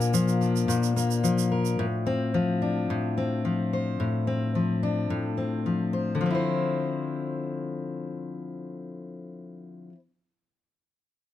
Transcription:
0.00 0.67 A#2 medium
0.00 0.13 F3 medium
0.00 0.95 A#3 medium
0.00 0.41 D4 medium
0.00 1.50 A#4 medium
0.00 shaker soft
0.14 1.23 F3 medium
0.14 shaker medium
0.28 shaker soft
0.41 2.09 D4 medium
0.41 shaker soft
0.56 shaker soft
0.68 1.79 A#2 medium
0.68 shaker medium
0.83 shaker soft
0.96 1.85 A#3 medium
0.96 shaker soft
1.11 shaker soft
1.24 2.34 F3 medium
1.24 shaker medium
1.38 shaker soft
1.52 1.85 A#4 soft
1.65 shaker soft
1.79 2.89 A2 medium
2.06 3.17 C4 medium
2.34 3.44 F3 medium
2.62 4.83 D4 medium
2.90 3.99 A2 medium
3.18 4.27 C4 soft
3.45 4.55 F3 medium
3.73 5.93 C5 soft
4.00 5.09 A2 medium
4.27 5.37 C4 medium
4.55 5.65 F3 medium
4.83 6.29 D4 medium
5.10 6.27 A2 medium
5.37 6.25 C4 soft
5.66 6.20 F3 soft
5.93 6.34 C5 soft
6.15 9.89 D3 medium
6.21 9.92 F3 medium
6.26 9.95 C4 medium
6.30 9.97 E4 medium
6.35 9.99 C5 medium

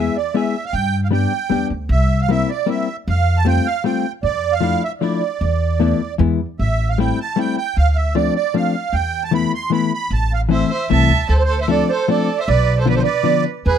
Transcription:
0.00 0.15 G#3 medium
0.00 0.16 B3 soft
0.00 0.16 E4 soft
0.00 0.17 G#4 medium
0.00 0.17 E5 medium
0.17 0.36 D5 medium
0.34 0.54 G#3 medium
0.34 0.54 B3 soft
0.34 0.55 E4 soft
0.34 0.55 G#4 medium
0.34 0.65 E5 medium
0.66 0.74 F5 medium
0.73 1.24 G2 medium
0.73 1.01 G5 medium
1.04 1.08 F5 medium
1.11 1.31 G3 medium
1.11 1.32 B3 soft
1.11 1.32 D4 soft
1.11 1.33 G4 medium
1.11 1.68 G5 medium
1.50 1.69 E2 medium
1.50 1.70 G3 soft
1.50 1.71 B3 soft
1.50 1.71 D4 medium
1.50 1.72 G4 medium
1.70 1.88 D2 medium
1.89 2.40 C2 medium
1.89 2.21 E5 medium
2.21 2.30 F5 medium
2.29 2.49 G3 medium
2.29 2.49 A#3 medium
2.29 2.50 C4 soft
2.29 2.50 E4 medium
2.29 2.50 E5 medium
2.50 2.69 D5 medium
2.66 2.87 G3 soft
2.66 2.88 A#3 soft
2.66 2.87 C4 soft
2.66 2.88 E4 medium
2.66 2.96 E5 medium
3.07 3.58 F2 medium
3.07 3.38 F5 medium
3.37 3.47 A5 medium
3.45 3.66 G3 soft
3.45 3.66 A3 soft
3.45 3.66 C4 medium
3.45 3.67 F4 medium
3.45 3.67 G5 medium
3.66 3.84 F5 medium
3.84 4.05 G3 medium
3.84 4.05 A3 soft
3.84 4.05 C4 medium
3.84 4.06 F4 medium
3.84 4.12 G5 medium
4.23 4.74 F2 medium
4.23 4.54 D5 medium
4.53 4.83 F5 medium
4.61 4.82 F3 medium
4.61 4.82 A3 medium
4.61 4.83 D4 medium
4.61 4.83 E4 medium
4.83 4.92 E5 medium
5.01 5.21 F3 medium
5.01 5.22 A3 soft
5.01 5.22 D4 medium
5.01 5.22 E4 medium
5.01 6.15 D5 medium
5.41 5.92 E2 medium
5.80 6.00 E3 medium
5.80 6.00 A3 medium
5.80 6.00 B3 medium
5.80 6.01 E4 medium
6.18 6.45 E2 medium
6.18 6.39 E3 medium
6.18 6.39 G#3 medium
6.18 6.40 B3 medium
6.18 6.40 E4 medium
6.59 7.10 A1 medium
6.59 6.90 E5 medium
6.89 6.99 F5 medium
6.98 7.18 G3 soft
6.98 7.18 A3 soft
6.98 7.19 C4 soft
6.98 7.19 E4 medium
6.98 7.19 G5 medium
7.20 7.39 A5 medium
7.36 7.56 G3 medium
7.36 7.57 A3 medium
7.36 7.57 C4 soft
7.36 7.58 E4 medium
7.36 7.56 G5 medium
7.57 7.77 G5 medium
7.77 8.27 D2 medium
7.77 7.97 F5 medium
7.96 8.15 E5 medium
8.15 8.35 F3 medium
8.15 8.35 A3 soft
8.15 8.36 C4 soft
8.15 8.36 D4 medium
8.15 8.34 D5 medium
8.35 8.55 D5 medium
8.54 8.74 F3 medium
8.54 8.74 A3 medium
8.54 8.75 C4 soft
8.54 8.75 D4 medium
8.54 8.95 F5 medium
8.93 9.44 E2 medium
8.93 9.24 G5 medium
9.24 9.33 A5 medium
9.31 9.52 E3 medium
9.31 9.52 A3 medium
9.31 9.53 B3 medium
9.31 9.53 E4 medium
9.31 9.52 B5 medium
9.54 9.71 C6 medium
9.70 9.91 E3 soft
9.70 9.92 A3 soft
9.70 9.92 B3 medium
9.70 9.92 E4 medium
9.70 9.92 B5 medium
9.94 10.13 B5 medium
10.11 10.62 A1 medium
10.11 10.33 A5 medium
10.33 10.41 F5 medium
10.49 10.70 E3 medium
10.49 10.70 A3 soft
10.49 10.70 C4 soft
10.49 10.71 E4 medium
10.49 10.70 C5 medium
10.49 10.71 E5 medium
10.71 10.89 C5 medium
10.71 10.92 E5 medium
10.90 11.09 C2 medium
10.90 11.10 E3 soft
10.90 11.11 A3 soft
10.90 11.11 C4 medium
10.90 11.11 E4 medium
10.90 11.28 E5 medium
10.90 11.32 A5 medium
11.09 11.27 D2 medium
11.29 11.81 D2 medium
11.29 11.36 A4 medium
11.29 11.37 C5 medium
11.37 11.44 A4 soft
11.37 11.43 C5 medium
11.44 11.60 A4 medium
11.44 11.60 C5 medium
11.61 11.69 C5 medium
11.61 11.70 E5 medium
11.68 11.89 F3 medium
11.68 11.89 A3 soft
11.68 11.90 C4 soft
11.68 11.90 D4 medium
11.68 11.88 A4 medium
11.68 11.91 D5 medium
11.89 12.09 A4 medium
11.89 12.09 C5 medium
12.08 12.29 F3 medium
12.08 12.29 A3 medium
12.08 12.29 C4 medium
12.08 12.29 D4 medium
12.08 12.37 A4 medium
12.08 12.40 D5 medium
12.40 12.48 C5 medium
12.40 12.49 E5 medium
12.48 12.99 B1 medium
12.48 12.76 B4 medium
12.48 12.78 D5 medium
12.78 12.87 A4 medium
12.78 12.88 C5 medium
12.85 13.06 D3 medium
12.85 13.07 F3 medium
12.85 13.07 B3 soft
12.85 13.07 D4 medium
12.85 12.95 B4 medium
12.85 12.95 D5 medium
12.96 13.02 A4 medium
12.96 13.02 C5 medium
13.03 13.44 B4 medium
13.03 13.44 D5 medium
13.23 13.45 D3 soft
13.23 13.45 F3 medium
13.23 13.46 B3 soft
13.23 13.46 D4 medium
13.66 13.78 E2 medium
13.66 13.78 G#4 medium
13.66 13.78 B4 medium

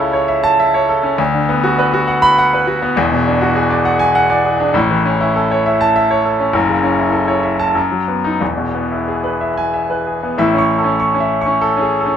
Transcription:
0.00 1.15 C#2 medium
0.00 1.21 C#3 medium
0.00 1.03 C#4 medium
0.00 1.21 E4 medium
0.00 0.23 A4 medium
0.13 0.38 C#5 medium
0.28 0.53 E5 medium
0.44 0.68 A5 loud
0.59 0.83 E5 medium
0.74 0.98 C#5 medium
0.89 1.13 A4 medium
1.03 1.19 C#4 medium
1.18 2.93 D2 medium
1.34 1.58 D3 medium
1.49 1.73 B3 medium
1.64 1.88 F#4 medium
1.78 2.02 B4 medium
1.94 2.17 F#4 medium
2.08 2.32 F#5 medium
2.22 2.46 B5 loud
2.38 2.62 F#5 medium
2.53 2.77 B4 medium
2.67 2.91 F#4 medium
2.82 2.97 B3 medium
2.96 4.70 E1 medium
2.96 4.71 E2 medium
3.12 3.36 B2 medium
3.28 3.51 D4 medium
3.41 3.65 F#4 medium
3.55 3.79 G#4 medium
3.70 3.94 D5 medium
3.85 4.09 F#5 medium
3.99 4.24 G#5 medium
4.15 4.39 F#5 medium
4.30 4.54 D5 medium
4.45 4.69 G#4 medium
4.60 4.75 D4 medium
4.74 6.50 A1 medium
4.74 6.51 A2 medium
4.91 5.15 E3 medium
5.05 5.29 C#4 medium
5.21 5.45 E4 medium
5.36 5.60 A4 medium
5.51 5.75 C#5 medium
5.66 5.90 E5 medium
5.81 6.05 A5 loud
5.96 6.20 E5 medium
6.11 6.34 C#5 medium
6.25 6.49 A4 medium
6.40 6.55 C#4 medium
6.53 7.71 F#1 medium
6.53 7.72 F#2 medium
6.69 6.93 C#3 medium
6.83 7.07 C#4 medium
6.98 7.22 E4 medium
7.12 7.37 A4 medium
7.28 7.53 C#5 medium
7.43 7.69 E5 medium
7.60 7.75 A5 medium
7.75 8.38 F#2 medium
7.91 8.17 F#3 medium
8.08 8.34 B3 soft
8.24 8.41 D#4 medium
8.40 10.33 E1 medium
8.40 10.34 E2 medium
8.57 8.84 B2 soft
8.74 9.01 B3 medium
8.92 9.18 E4 medium
9.08 9.34 G#4 medium
9.24 9.50 B4 medium
9.41 9.67 E5 medium
9.57 9.83 G#5 medium
9.74 9.99 E5 medium
9.90 10.16 B4 medium
10.07 10.32 G#4 soft
10.23 10.38 B3 soft
10.38 12.16 A1 medium
10.38 12.17 A2 medium
10.38 10.71 E5 medium
10.54 10.78 C#4 medium
10.58 10.91 C#6 medium
10.79 11.11 A4 medium
10.84 11.08 C#4 medium
11.00 11.32 C#6 medium
11.14 11.39 C#4 medium
11.20 11.52 E5 medium
11.41 11.73 C#6 medium
11.46 11.70 C#4 medium
11.61 11.93 A4 medium
11.77 12.00 C#4 medium
11.81 12.01 G#4 medium
12.00 12.17 A4 medium
12.06 12.17 C#4 medium

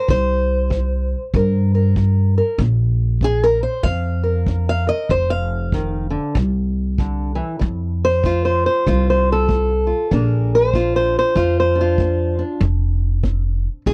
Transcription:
0.00 0.11 A#4 medium
0.08 1.13 C2 loud
0.08 0.66 C3 medium
0.08 1.98 C5 loud
0.08 kick medium
0.70 1.29 G3 medium
0.70 kick medium
1.34 2.38 G2 loud
1.34 1.92 G3 medium
1.34 1.73 A#4 medium
1.34 kick medium
1.75 2.36 A#4 soft
1.96 2.55 G3 medium
1.96 kick medium
2.38 2.58 A#4 medium
2.58 3.63 A#1 loud
2.58 3.18 A#3 medium
2.58 kick medium
3.21 3.80 D4 medium
3.21 3.44 G#4 loud
3.21 kick medium
3.44 3.63 A#4 loud
3.63 3.84 C5 loud
3.83 4.88 F2 loud
3.83 4.42 F3 medium
3.83 4.68 F5 loud
3.83 kick medium
4.24 4.86 A#4 medium
4.47 5.05 D4 medium
4.47 kick medium
4.69 4.88 F5 loud
4.87 5.08 A#4 medium
4.87 5.10 D#5 loud
5.09 6.14 F1 loud
5.09 5.68 F3 medium
5.09 5.31 C5 loud
5.09 kick medium
5.30 6.35 F5 loud
5.72 6.10 D#3 medium
5.72 kick medium
6.10 6.35 D3 medium
6.35 7.39 C2 loud
6.35 6.94 C3 medium
6.35 kick medium
6.98 7.35 D3 medium
6.98 kick medium
7.35 7.59 E3 medium
7.59 8.65 F2 loud
7.59 8.18 F3 medium
7.59 kick medium
8.05 8.44 C5 loud
8.23 8.81 A3 medium
8.23 8.87 F4 medium
8.23 kick medium
8.45 8.65 C5 medium
8.66 9.07 C5 medium
8.87 9.91 C2 loud
8.87 9.44 C3 medium
8.87 9.70 F4 medium
8.87 kick medium
9.10 9.29 C5 medium
9.32 10.13 A4 medium
9.48 10.06 A3 medium
9.48 kick medium
9.87 10.13 F4 soft
10.11 11.16 A#1 loud
10.11 10.69 A#2 medium
10.11 10.73 A#3 soft
10.11 11.74 D4 soft
10.11 10.75 G#4 medium
10.11 10.54 A#4 medium
10.11 kick medium
10.55 10.95 C5 loud
10.74 11.32 A#3 medium
10.74 11.35 F4 medium
10.74 kick medium
10.96 11.16 C5 medium
11.19 11.59 C5 loud
11.35 12.40 F2 loud
11.35 11.94 F3 medium
11.35 11.78 F4 medium
11.35 kick medium
11.60 12.42 C5 medium
11.75 12.37 D4 soft
11.81 12.63 F4 medium
11.98 12.57 A#3 medium
11.98 kick medium
12.39 12.60 D4 soft
12.61 13.65 F1 loud
12.61 13.20 A2 medium
12.61 kick medium
13.23 13.81 C4 medium
13.23 kick medium
13.86 13.94 C2 loud
13.86 13.94 A2 medium
13.86 13.94 G#4 loud
13.86 kick medium

